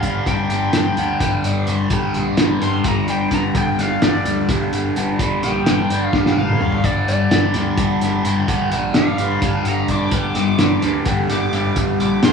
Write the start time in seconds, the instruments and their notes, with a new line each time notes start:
Already playing: analog synth lead F5 C7
0.03 picked electric bass G1, distorted electric guitar G2 D3 G3, kick, closed hi-hat
0.26 picked electric bass G1, distorted electric guitar G2 D3 G3, analog synth lead G5 D7, kick, closed hi-hat
0.50 picked electric bass G1, distorted electric guitar D3 G3, closed hi-hat
0.73 picked electric bass G1, distorted electric guitar G2 D3 G3, snare, closed hi-hat
0.97 picked electric bass D2, distorted electric guitar G2 D3 G3, closed hi-hat
1.20 picked electric bass G1, distorted electric guitar G2 D3 G3, kick, snare, closed hi-hat
1.44 picked electric bass G1, distorted electric guitar D3 G3, closed hi-hat
1.67 picked electric bass G1, distorted electric guitar G2 D3 G3, closed hi-hat
1.90 picked electric bass G1, distorted electric guitar G2 D3 G3, kick, closed hi-hat
2.14 picked electric bass A#1, distorted electric guitar D3 G3, closed hi-hat
2.37 picked electric bass G1, distorted electric guitar G2 D3 G3, snare, closed hi-hat
2.62 picked electric bass G1, distorted electric guitar G2 D3 G3, analog synth lead C6 G7, closed hi-hat
2.84 picked electric bass G1, distorted electric guitar G2 D3 G3, analog synth lead A#5 F7, kick, closed hi-hat
3.08 picked electric bass G1, distorted electric guitar D3 G3, analog synth lead G5 D7, closed hi-hat
3.31 picked electric bass G1, distorted electric guitar G2 D3 G3, analog synth lead A#5 F7, kick, snare, closed hi-hat
3.55 picked electric bass G1, distorted electric guitar G2 D3 G3, analog synth lead G5 D7, kick, closed hi-hat
3.79 picked electric bass G1, distorted electric guitar D3 G3, analog synth lead F5 C7, snare, closed hi-hat
4.02 picked electric bass G1, distorted electric guitar G2 D3 G3, analog synth lead D5 A6, snare, closed hi-hat
4.26 picked electric bass D2, distorted electric guitar G2 D3 G3, closed hi-hat
4.49 picked electric bass G1, distorted electric guitar G2 D3 G3, kick, snare, closed hi-hat
4.73 picked electric bass G1, distorted electric guitar D3 G3, closed hi-hat
4.96 picked electric bass G1, distorted electric guitar G2 D3 G3, closed hi-hat
5.19 picked electric bass G1, distorted electric guitar G2 D3 G3, kick, closed hi-hat
5.43 picked electric bass A#1, distorted electric guitar D3 G3, analog synth lead G5 D7, snare, closed hi-hat
5.66 picked electric bass G1, distorted electric guitar G2 D3 G3, snare, closed hi-hat
5.90 picked electric bass G1, distorted electric guitar G2 D3 G3, closed hi-hat
6.06 analog synth lead F5 C7
6.13 picked electric bass G1, distorted electric guitar G2 D3 G3, kick, snare
6.26 snare
6.37 picked electric bass G1, distorted electric guitar D3 G3, analog synth lead F5 C7, high tom
6.49 mid tom
6.60 picked electric bass G1, distorted electric guitar G2 D3 G3, analog synth lead F5 C7, mid tom
6.72 floor tom
6.83 picked electric bass G1, distorted electric guitar G2 D3 G3, analog synth lead D5 A6, kick, closed hi-hat
7.07 picked electric bass G1, distorted electric guitar D3 G3, analog synth lead D5 A6, closed hi-hat
7.30 picked electric bass G1, distorted electric guitar G2 D3 G3, snare, closed hi-hat
7.54 picked electric bass D2, distorted electric guitar G2 D3 G3, snare, closed hi-hat
7.77 picked electric bass G1, distorted electric guitar G2 D3 G3, kick, closed hi-hat
8.01 picked electric bass G1, distorted electric guitar D3 G3, snare, closed hi-hat
8.24 picked electric bass G1, distorted electric guitar G2 D3 G3, closed hi-hat
8.47 picked electric bass G1, distorted electric guitar G2 D3 G3, kick, closed hi-hat
8.70 picked electric bass A#1, distorted electric guitar D3 G3, closed hi-hat
8.94 picked electric bass G1, distorted electric guitar G2 D3 G3, analog synth lead F5 C7, snare, closed hi-hat
9.17 picked electric bass G1, distorted electric guitar G2 D3 G3, closed hi-hat
9.41 picked electric bass G1, distorted electric guitar G2 D3 G3, kick, closed hi-hat
9.64 picked electric bass G1, distorted electric guitar D3 G3, analog synth lead A#5 F7, closed hi-hat
9.88 picked electric bass G1, distorted electric guitar G2 D3 G3, analog synth lead D6 A7, kick, closed hi-hat
10.11 picked electric bass G1, distorted electric guitar G2 D3 G3, analog synth lead D6 A7, kick, closed hi-hat
10.34 picked electric bass G1, distorted electric guitar D3 G3, snare, closed hi-hat
10.58 picked electric bass G1, distorted electric guitar G2 D3 G3, snare, closed hi-hat
10.82 picked electric bass D2, distorted electric guitar G2 D3 G3, snare, closed hi-hat
11.05 picked electric bass G1, distorted electric guitar G2 D3 G3, kick, snare, closed hi-hat
11.29 picked electric bass G1, distorted electric guitar D3 G3, analog synth lead D6 A7, snare, closed hi-hat
11.53 picked electric bass G1, distorted electric guitar G2 D3 G3, closed hi-hat
11.76 picked electric bass G1, distorted electric guitar G2 D3 G3, kick, closed hi-hat
12.00 picked electric bass A#1, distorted electric guitar D3 G3, analog synth lead D6 A7, closed hi-hat
12.23 picked electric bass G1, distorted electric guitar G2 D3 G3, analog synth lead C6 G7, snare, closed hi-hat